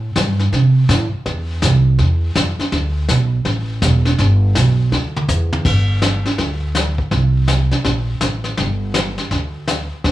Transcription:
Already playing: upright bass A2
0.16 upright bass G2, snare, hi-hat pedal
0.39 snare
0.52 upright bass C3, brush sweep, snare
0.89 upright bass A2, snare, hi-hat pedal
1.13 muted upright bass stroke
1.26 upright bass E2, brush sweep, snare
1.62 upright bass C2, snare, hi-hat pedal
1.99 upright bass E2, brush sweep, snare
2.35 upright bass F2, snare, hi-hat pedal
2.59 muted upright bass stroke, snare
2.72 upright bass D2, brush sweep, snare
3.09 upright bass B1, snare, hi-hat pedal
3.45 upright bass A1, brush sweep, snare
3.82 upright bass E1, snare, hi-hat pedal
4.05 snare
4.18 upright bass G1, brush sweep, snare
4.55 upright bass B1, snare, hi-hat pedal
4.92 upright bass D2, snare
5.16 mid tom
5.28 upright bass E2, floor tom, hi-hat pedal
5.53 floor tom
5.65 upright bass G1, brush sweep, kick, snare, crash
6.02 snare, hi-hat pedal
6.26 snare
6.38 upright bass D2, brush sweep, snare
6.75 snare, hi-hat pedal
6.98 kick
7.11 upright bass C2, brush sweep, snare
7.48 snare, hi-hat pedal
7.71 snare
7.84 upright bass A#1, brush sweep, snare
8.21 upright bass A1, snare, hi-hat pedal
8.44 snare
8.57 upright bass G1, brush sweep, snare
8.94 snare, hi-hat pedal
9.18 snare
9.31 upright bass D2, brush sweep, snare
9.68 snare, hi-hat pedal
10.04 upright bass D2, brush sweep, snare

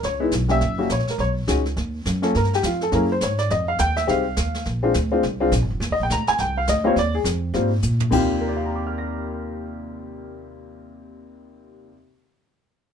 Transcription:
0.03 upright bass C#2, upright piano C#5, brush sweep, snare
0.20 upright piano G#3 B3 D#4 E4
0.31 upright bass B1, snare, hi-hat pedal
0.48 upright piano G3 A#3 C#4 G4 E5, snare
0.61 upright bass F#1, brush sweep, snare
0.78 upright piano G3 A#3 C#4 F#4
0.89 upright bass A#1, upright piano C#5, snare, hi-hat pedal
0.99 snare
1.07 muted upright bass stroke, snare
1.09 upright piano A#4, snare
1.18 upright bass B1, upright piano C#5, brush sweep, snare
1.47 upright bass C#2, upright piano G#3 C#4 D#4 F#4, snare, hi-hat pedal
1.65 snare
1.77 upright bass D#2, brush sweep, snare
2.05 upright bass F#2, snare, hi-hat pedal
2.22 upright piano A#3 C#4 F4 A4, snare
2.34 upright bass G2, upright piano A#4, brush sweep, snare
2.44 snare
2.53 upright piano G4, snare
2.63 upright bass F2, upright piano F4, snare, hi-hat pedal
2.81 upright piano A4, snare
2.92 upright bass F#2, upright piano A#3 C#4 E4 G#4 A#4, brush sweep, snare
3.12 upright piano C5
3.21 upright bass G#2, upright piano C#5, snare, hi-hat pedal
3.38 upright piano D5, snare
3.50 upright bass F2, upright piano D#5, brush sweep, snare
3.68 upright piano F5
3.79 upright bass D#2, upright piano G5, snare, hi-hat pedal
3.96 upright piano E5, snare
4.07 upright bass C2, upright piano G#3 C4 D#4 G4 F5, brush sweep, snare
4.36 upright bass D#2, snare, hi-hat pedal
4.54 snare
4.65 upright bass A#1, brush sweep, snare
4.83 upright piano G#3 C4 D4 F4
4.94 upright bass D2, snare, hi-hat pedal
5.11 upright piano G#3 C4 D4 F4
5.23 upright bass C2, brush sweep, snare
5.40 upright piano G#3 C4 D4 F4
5.52 upright bass A#1, snare, hi-hat pedal
5.62 upright bass G#1
5.70 upright bass F1
5.80 upright bass D#2, brush sweep, snare
5.90 upright bass C2, upright piano D#5
6.00 upright bass A#1, upright piano G5
6.10 upright bass D2, upright piano A#5, snare, hi-hat pedal
6.27 upright piano G#5, muted upright bass stroke, snare
6.38 upright bass C2, upright piano G5, brush sweep, snare
6.57 upright piano F5
6.67 upright bass D2, upright piano D#5, snare, hi-hat pedal
6.84 upright piano G3 A#3 C4 F4 C#5
6.96 upright bass D#2, upright piano D5, brush sweep, snare
7.15 upright piano G#4
7.24 upright bass F2, snare, hi-hat pedal
7.54 upright bass G#2, upright piano G3 A#3 C4 F4, brush sweep, snare
7.82 upright bass A#2, hi-hat pedal
8.00 floor tom
8.10 upright piano D#2 C3 G3 F4 G4, upright bass D#2, kick, crash
8.41 upright piano A#4
8.48 upright piano D5
8.57 upright piano F5
8.66 upright piano A#5
8.75 upright piano D6
8.87 upright piano F6
8.98 upright piano A#6

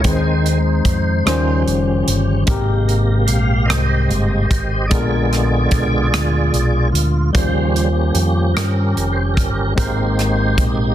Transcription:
0.04 fingered electric bass D#2, tonewheel organ D#3 G#3 C4 D#4 C5, tine electric piano D#3 G#3 C4 D#4 B4, kick, closed hi-hat
0.13 tine electric piano C5
0.46 closed hi-hat
0.85 fingered electric bass F2, kick, closed hi-hat
1.25 fingered electric bass D#2, tonewheel organ C#3 F3 C#4 G4, tine electric piano D#3 G3 C#4 F4 C5, cross-stick, closed hi-hat
1.66 fingered electric bass F1, closed hi-hat
2.07 fingered electric bass G1, closed hi-hat
2.46 fingered electric bass G#1, tine electric piano G#2 G#3 C4 G4 A#4, tonewheel organ C3 A#3 G4, kick, closed hi-hat
2.88 tonewheel organ A#4, closed hi-hat
3.27 fingered electric bass A#1, tonewheel organ F5, closed hi-hat
3.66 fingered electric bass C2, tonewheel organ G4 C5 D#5
3.70 cross-stick, closed hi-hat
4.08 fingered electric bass G1, tonewheel organ C3 G#3 A#3, closed hi-hat
4.51 fingered electric bass G#1, kick, closed hi-hat
4.87 tine electric piano A#2 G#3 B3, tonewheel organ D3 G#3 B3 F4 G#4 D5, kick, closed hi-hat
4.91 fingered electric bass A#1, tine electric piano D4 A#4
5.33 cross-stick, closed hi-hat
5.71 fingered electric bass B1, kick, closed hi-hat
6.12 fingered electric bass D2, cross-stick, closed hi-hat
6.53 fingered electric bass B1, closed hi-hat
6.92 fingered electric bass D2, tonewheel organ F4, closed hi-hat
7.33 fingered electric bass D#2, tonewheel organ C#3 F3 G3 A#3 C#4 G4 C5, tine electric piano D#3 G3 C#4 F4, kick, closed hi-hat
7.37 tine electric piano C5
7.76 closed hi-hat
8.13 fingered electric bass F2, tonewheel organ G4, closed hi-hat
8.54 fingered electric bass G2, tonewheel organ C#4 G4 A#4, cross-stick, closed hi-hat
8.96 fingered electric bass F1, closed hi-hat
9.13 tonewheel organ C5
9.34 fingered electric bass G1, tonewheel organ A#4, kick
9.38 closed hi-hat
9.75 fingered electric bass G#1, tine electric piano G#2 G#3 C4 G4 A#4, tonewheel organ G#3 A#3 D#4 C5, kick, closed hi-hat
9.79 tonewheel organ C4 G4
10.19 cross-stick, closed hi-hat
10.58 fingered electric bass A#1, kick, closed hi-hat

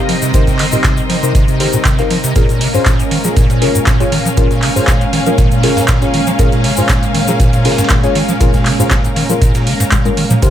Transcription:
Already playing: string machine C3 G3 D#4 C5, string section C4 A#4 D#5 G5
0.09 acid bass F3, open hi-hat, ride
0.22 acid bass C3, snare, closed hi-hat, shaker
0.34 acid bass C3, synth stab D#4 G4 A#4 C5, kick, closed hi-hat, ride, shaker
0.47 acid bass C3, kick, snare, closed hi-hat, shaker
0.59 acid bass D#3, clap, open hi-hat, ride
0.72 acid bass A#2, synth stab D#4 G4 A#4 D#5, shaker
0.84 acid bass C3, kick, snare, clap, closed hi-hat, ride, shaker
0.97 acid bass A#2, closed hi-hat, shaker
1.09 acid bass F3, snare, open hi-hat, ride
1.23 acid bass C3, synth stab D#4 G4 A#4 C5, closed hi-hat, shaker
1.35 acid bass C3, kick, closed hi-hat, ride, shaker
1.48 acid bass C3, closed hi-hat, shaker
1.60 acid bass D#3, synth stab D#4 G4 A#4 C5, snare, open hi-hat, ride
1.73 acid bass A#2, snare, closed hi-hat, shaker
1.85 acid bass C3, kick, snare, clap, closed hi-hat, ride, shaker
1.98 acid bass A#2, synth stab D#4 G4 A#4 F5, snare, closed hi-hat, shaker
2.10 acid bass F3, open hi-hat, ride
2.24 acid bass C3, closed hi-hat, ride, shaker
2.36 acid bass A#2, string machine A#2 G#3 C#4 A#4, synth stab C#4 F4 G#4 A#4, string section C#4, kick, closed hi-hat, ride, shaker
2.49 acid bass A#2, closed hi-hat, shaker
2.61 acid bass C#3, open hi-hat, ride
2.68 string section F5 G#5
2.74 acid bass G#2, synth stab C#4 F4 G#4 C5, shaker
2.86 acid bass A#2, kick, snare, clap, closed hi-hat, ride, shaker
2.99 acid bass G#2, closed hi-hat, shaker
3.11 acid bass D#3, open hi-hat, ride
3.24 acid bass F3, synth stab C#4 F4 G#4 A#4, snare, closed hi-hat, shaker
3.36 acid bass A#2, kick, closed hi-hat, ride, shaker
3.50 acid bass A#2, closed hi-hat, ride, shaker
3.62 acid bass C#3, synth stab C#4 F4 G#4 A#4, open hi-hat, ride
3.75 acid bass G#2, closed hi-hat, shaker
3.86 acid bass A#2, kick, snare, clap, closed hi-hat, ride, shaker
4.00 acid bass G#2, synth stab C#4 F4 G#4 C#5, snare, closed hi-hat, shaker
4.12 acid bass D#3, open hi-hat, ride
4.26 acid bass F3, snare, closed hi-hat, shaker
4.37 acid bass A#2, synth stab C#4 F4 G#4 A#4, kick, closed hi-hat, ride, shaker
4.51 acid bass A#2, snare, closed hi-hat, shaker
4.62 acid bass C#3, clap, open hi-hat, ride
4.76 acid bass G#2, synth stab C#4 F4 G#4 C5, shaker
4.87 acid bass A#2, kick, snare, clap, closed hi-hat, ride, shaker
5.01 acid bass G#2, closed hi-hat, shaker
5.13 acid bass D#3, snare, open hi-hat, ride
5.26 acid bass F3, synth stab C#4 F4 G#4 A#4, closed hi-hat, shaker
5.38 acid bass A#2, kick, closed hi-hat, ride, shaker
5.51 acid bass A#2, closed hi-hat, shaker
5.63 acid bass C#3, synth stab C#4 F4 G#4 A#4, snare, open hi-hat, ride
5.77 acid bass G#2, snare, ride, shaker
5.88 acid bass A#2, kick, snare, clap, closed hi-hat, ride, shaker
6.02 acid bass G#2, synth stab C#4 F4 G#4 C#5, snare, closed hi-hat, shaker
6.14 acid bass D#3, open hi-hat, ride
6.27 acid bass F3, ride, shaker
6.39 acid bass A#2, synth stab C#4 F4 G#4 A#4, kick, closed hi-hat, ride, shaker
6.52 acid bass A#2, closed hi-hat, shaker
6.64 acid bass C#3, open hi-hat, ride
6.77 acid bass G#2, synth stab C#4 F4 G#4 C5, shaker
6.89 acid bass A#2, kick, snare, clap, closed hi-hat, ride, shaker
7.03 acid bass G#2, closed hi-hat, shaker
7.15 acid bass D#3, open hi-hat, ride
7.28 acid bass F3, synth stab C#4 F4 G#4 A#4, snare, closed hi-hat, shaker
7.40 acid bass A#2, kick, closed hi-hat, ride, shaker
7.53 acid bass A#2, closed hi-hat, ride, shaker
7.65 acid bass C#3, synth stab C#4 F4 G#4 A#4, snare, open hi-hat, ride
7.72 snare, ride
7.78 acid bass G#2, snare, closed hi-hat, ride, shaker
7.84 snare, ride
7.89 acid bass A#2, kick, snare, clap, closed hi-hat, ride, shaker
8.03 acid bass G#2, synth stab C#4 F4 G#4 C#5, snare, closed hi-hat, shaker
8.15 acid bass D#3, open hi-hat, ride
8.29 acid bass F3, snare, closed hi-hat, shaker
8.40 acid bass A#2, synth stab C#4 F4 G#4 A#4, kick, closed hi-hat, ride, shaker
8.54 acid bass A#2, kick, snare, closed hi-hat, shaker
8.65 acid bass C#3, clap, open hi-hat, ride
8.79 acid bass G#2, synth stab C#4 F4 G#4 C5, shaker
8.91 acid bass A#2, kick, snare, clap, closed hi-hat, ride, shaker
9.04 acid bass G#2, closed hi-hat, shaker
9.16 acid bass D#3, open hi-hat, ride
9.29 acid bass F3, synth stab C#4 F4 G#4 A#4, closed hi-hat, shaker
9.41 acid bass A#2, kick, closed hi-hat, ride, shaker
9.54 acid bass A#2, closed hi-hat, ride, shaker
9.67 acid bass C#3, open hi-hat
9.80 acid bass G#2, closed hi-hat, ride, shaker
9.92 acid bass A#2, kick, clap, closed hi-hat, high tom, ride, shaker
10.05 acid bass G#2, synth stab C#4 F4 G#4 A#4, closed hi-hat, high tom, shaker
10.17 acid bass D#3, open hi-hat, ride
10.30 acid bass F3, closed hi-hat, mid tom, ride, shaker
10.42 acid bass C3, string machine C3 G3 D#4, string section C4, synth stab D#4 G4 A#4 C5, kick, closed hi-hat, ride, shaker

